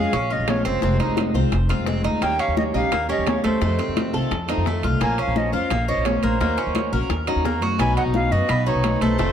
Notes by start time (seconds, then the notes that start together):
Already playing: F3 G#3 C#4 F4 G#4 F5
0.13 A#1 C#4, muted steel-string acoustic guitar stroke, high bongo, high conga, high timbale
0.30 G#3 C#4 F4 D#5, high conga
0.39 A#1
0.47 F3 G#3 C#4 F4 C#5, high bongo, low bongo, high conga, high timbale, low timbale
0.65 F#1 C4 C5, high conga, high timbale
0.82 F1 C3 D#3 G#3 C4 F4, high bongo, high conga
1.00 D#4, high bongo, high conga, high timbale
1.08 F1
1.17 high bongo, high conga, high timbale
1.34 C2 D#3 G#3 C4 F4 C5, high bongo, high conga
1.52 F1, muted steel-string acoustic guitar stroke, high bongo, high conga, high timbale
1.69 D#3 G#3 C4 F4, high conga, high timbale
1.78 F1
1.86 D#3 G#3 C4 F4, high bongo, low bongo, high conga
2.04 D2 D#4, high bongo, high conga, high timbale
2.21 D#2 D#3 G3 A#3 C#4 G4 G5, high bongo, high conga, high timbale
2.39 C#4 F5, high conga, high timbale
2.48 D#2
2.57 D#5, high bongo, high conga
2.74 A#1 G3 C#4 D#4 G4 F5
2.92 D#2 A#3, muted steel-string acoustic guitar stroke, high bongo, high conga, high timbale
3.09 G3 C#4 G4 D#5, high conga
3.18 D#2
3.27 D#3 G3 C#4 G4 C#5, high bongo, low bongo, high conga, high timbale, low timbale
3.44 D#2 A3 C5, high conga, high timbale
3.61 F2 C3 D#3 A3 C4 F4, high bongo, high conga
3.79 C4, high bongo, high conga, high timbale
3.88 F2
3.97 high bongo, high conga, high timbale
4.13 C2 D#3 A3 C4 F4 A4, high bongo, high conga
4.31 F2, muted steel-string acoustic guitar stroke, high bongo, high conga, high timbale
4.48 D#3 A3 C4 D#4 F4, high conga, high timbale
4.57 F2
4.65 D#3 A3 C4 F4, high bongo, low bongo, high conga
4.83 C2 F4, high bongo, high conga, high timbale
5.00 A#1 F3 A#3 C#4 F4 C5 G#5, high bongo, high conga, high timbale
5.18 C#4 F5, high conga, high timbale
5.27 A#1
5.36 D#5, high bongo, high conga
5.52 F2 A#3 C#4 F4 C5 F5
5.70 A#1 A#3, muted steel-string acoustic guitar stroke, high bongo, high conga, high timbale
5.88 A#3 C#4 F4 C5 D#5, high conga
5.97 A#1
6.05 A#3 C#4 F4 C5 C#5, high bongo, low bongo, high conga, high timbale, low timbale
6.23 A#1 A#3 C5, high conga, high timbale
6.40 D#2 D#3 A#3 C#4 F#4, high bongo, high conga
6.58 C#4, high bongo, high timbale
6.66 D#2
6.75 high bongo, high conga, high timbale
6.92 A#1 A#3 C#4 F#4 A#4, high bongo, high conga
7.09 D#2, muted steel-string acoustic guitar stroke, high bongo, high conga, high timbale
7.27 A#3 C#4 D#4 F#4, high timbale
7.36 D#2
7.44 D#3 A#3 C#4, high bongo, low bongo, high conga, low timbale
7.62 F#2 F#4, high bongo, high conga, high timbale
7.78 B1 B2 F#3 B3 D#4 F#4 G#5, high bongo, high conga, high timbale
7.97 D#4 F#5, high timbale
8.05 B1
8.14 F5, high bongo, high conga
8.32 F#2 F#3 B3 D#4 F#4 D#5
8.48 B1 B3, muted steel-string acoustic guitar stroke, high bongo, high conga, high timbale
8.66 F#3 B3 D#4 F#4 C#5, high conga
8.75 B1
8.83 F#3 D#4 F#4, high bongo, low bongo, high conga, high timbale
9.01 B1 A3 C5, high conga, high timbale
9.17 F1 C3 D#3 A3 C4 F4, high bongo